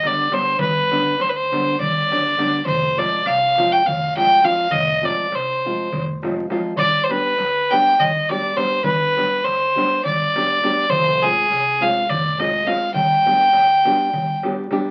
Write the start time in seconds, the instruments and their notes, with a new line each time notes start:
Already playing: upright bass G1
0.03 nylon-string guitar D3 G3 B3 D4, fiddle D5, darbuka tek
0.31 nylon-string guitar D3 G3 B3 D4, fiddle C5, darbuka tek
0.46 darbuka tek
0.59 upright bass G1, fiddle B4, darbuka dum
0.91 nylon-string guitar D3 G3 B3 D4, darbuka tek
1.20 upright bass D2, fiddle C5, darbuka tek
1.29 fiddle B4
1.37 fiddle C5, darbuka tek
1.52 nylon-string guitar D3 G3 B3 D4, darbuka tek
1.80 upright bass G1, fiddle D5, darbuka dum
2.11 nylon-string guitar D3 G3 B3 D4, darbuka tek
2.37 nylon-string guitar D3 G3 B3 D4, darbuka tek
2.66 upright bass F1, fiddle C5, darbuka dum
2.97 nylon-string guitar F3 G#3 C4 F4, fiddle D5, darbuka tek
3.26 upright bass C2, fiddle F5, darbuka tek
3.43 darbuka tek
3.58 nylon-string guitar F3 G#3 C4 F4, darbuka tek
3.72 fiddle G5
3.86 upright bass F1, fiddle F5, darbuka dum
4.16 nylon-string guitar F3 G#3 C4 F4, fiddle G5, darbuka tek
4.43 nylon-string guitar F3 G#3 C4 F4, fiddle F5, darbuka tek
4.58 darbuka tek
4.71 upright bass F1, fiddle D#5, darbuka dum
4.88 darbuka tek
5.02 nylon-string guitar F3 G#3 C4 F4, fiddle D5, darbuka tek
5.18 darbuka tek
5.32 upright bass C2, fiddle C5, darbuka tek
5.49 darbuka tek
5.65 nylon-string guitar F3 G#3 C4 F4
5.79 darbuka tek
5.92 upright bass F1, darbuka dum
6.23 nylon-string guitar F3 G#3 C4 F4, darbuka tek
6.37 darbuka tek
6.50 nylon-string guitar F3 G#3 C4 F4, darbuka tek
6.64 darbuka tek
6.76 upright bass G1, fiddle D5, darbuka dum
7.04 fiddle C5
7.09 nylon-string guitar G3 B3 D4 G4, fiddle B4, darbuka tek
7.38 upright bass D2, darbuka tek
7.55 darbuka tek
7.71 nylon-string guitar G3 B3 D4 G4, fiddle G5, darbuka tek
7.99 upright bass G1, fiddle D#5, darbuka dum
8.29 nylon-string guitar G3 B3 D4 G4, fiddle D5, darbuka tek
8.56 nylon-string guitar G3 B3 D4 G4, fiddle C5, darbuka tek
8.72 darbuka tek
8.84 upright bass G1, fiddle B4, darbuka dum
9.17 nylon-string guitar G3 B3 D4 G4, darbuka tek
9.44 upright bass D2, fiddle C5, darbuka tek
9.61 darbuka tek
9.76 nylon-string guitar G3 B3 D4 G4, darbuka tek
10.05 upright bass G1, fiddle D5, darbuka dum
10.36 nylon-string guitar G3 B3 D4 G4, darbuka tek
10.63 nylon-string guitar G3 B3 D4 G4, darbuka tek
10.77 darbuka tek
10.89 upright bass F1, fiddle C5, darbuka dum
11.22 nylon-string guitar G#3 C4 F4 G#4, fiddle G#4, darbuka tek
11.49 upright bass C2, darbuka tek
11.81 nylon-string guitar G#3 C4 F4 G#4, fiddle F5, darbuka tek
12.09 upright bass F1, fiddle D5, darbuka dum
12.39 nylon-string guitar G#3 C4 F4 G#4, fiddle D#5, darbuka tek
12.66 nylon-string guitar G#3 C4 F4 G#4, fiddle F5, darbuka tek
12.81 darbuka tek
12.94 upright bass G1, fiddle G5, darbuka dum
13.10 darbuka tek
13.26 nylon-string guitar G3 B3 D4 G4, darbuka tek
13.40 darbuka tek
13.53 upright bass D2, darbuka tek
13.69 darbuka tek
13.85 nylon-string guitar G3 B3 D4 G4, darbuka tek
14.13 upright bass G1, darbuka dum
14.29 darbuka tek
14.43 nylon-string guitar G3 B3 D4 G4, darbuka tek
14.57 darbuka tek
14.71 nylon-string guitar G3 B3 D4 G4, darbuka tek
14.84 darbuka tek